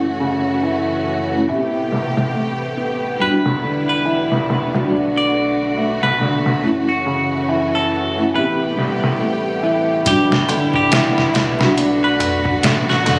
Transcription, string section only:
0.00 1.47 E3 medium
0.00 3.17 A3 medium
0.00 1.47 C#4 medium
0.00 1.46 F#4 medium
1.49 3.19 C3 medium
1.49 6.59 B3 medium
1.49 3.19 G4 medium
3.20 6.60 D3 medium
3.20 4.90 G3 medium
3.20 4.90 E4 medium
4.91 8.31 A3 medium
4.91 8.31 F#4 medium
6.62 8.32 E3 medium
6.62 8.32 C#4 medium
8.34 10.04 C3 medium
8.34 10.04 A3 medium
8.34 10.04 B3 medium
8.34 10.04 G4 medium
10.06 13.19 D3 medium
10.06 11.76 G3 medium
10.06 13.19 B3 medium
10.06 11.76 E4 medium
11.77 13.19 A3 medium
11.77 13.19 F#4 medium

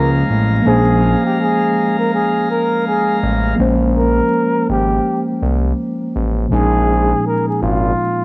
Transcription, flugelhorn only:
0.00 0.12 A#4 medium
0.67 1.21 G#4 loud
1.26 1.38 G4 medium
1.40 1.95 G#4 medium
1.99 2.16 A#4 medium
2.14 2.46 G#4 medium
2.50 2.83 A#4 medium
2.87 3.19 G#4 medium
3.97 4.65 A#4 medium
4.70 5.24 G4 medium
6.53 7.28 G#4 loud
7.27 7.45 A#4 medium
7.48 7.61 G#4 medium
7.63 8.25 F4 medium

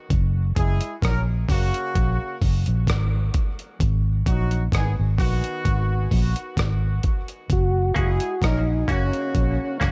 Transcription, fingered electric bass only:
0.11 0.51 F#1 loud
0.57 0.79 F#1 loud
1.03 1.44 A#1 medium
1.49 1.71 F#1 medium
1.96 2.17 A#1 medium
2.42 2.64 F#1 medium
2.68 2.86 A#1 medium
2.88 3.29 G#1 medium
3.81 4.21 G#1 loud
4.27 4.68 A#1 medium
4.73 4.94 G#1 medium
4.99 5.18 G#1 medium
5.19 5.41 A#1 medium
5.66 6.06 G#1 loud
6.12 6.33 A#1 medium
6.58 6.98 G#1 medium
7.50 7.91 F#1 loud
7.97 8.18 F#1 loud
8.42 8.83 A#1 medium
8.89 9.10 F#1 medium
9.36 9.57 A#1 medium
9.82 9.91 F#1 medium

